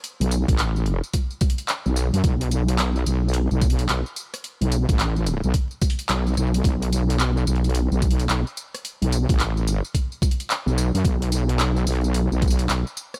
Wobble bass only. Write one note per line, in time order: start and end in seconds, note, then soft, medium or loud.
0.20 0.45 B1 medium
0.48 1.01 A1 loud
1.86 2.11 B1 loud
2.13 2.22 F#2 loud
2.24 3.05 B1 loud
3.06 3.48 B1 loud
3.51 3.87 B1 loud
3.89 4.03 B1 loud
4.61 4.86 B1 medium
4.89 5.41 A1 loud
5.44 5.52 B1 loud
6.09 6.35 B1 medium
6.36 6.62 B1 loud
6.64 7.45 B1 loud
7.47 7.89 B1 loud
7.91 8.27 B1 loud
8.29 8.44 B1 medium
9.02 9.26 B1 medium
9.29 9.66 A1 loud
9.66 9.81 G#1 loud
10.66 10.91 B1 loud
10.94 11.03 F#2 loud
11.04 11.85 B1 loud
11.86 12.29 B1 loud
12.31 12.68 B1 loud
12.69 12.84 B1 medium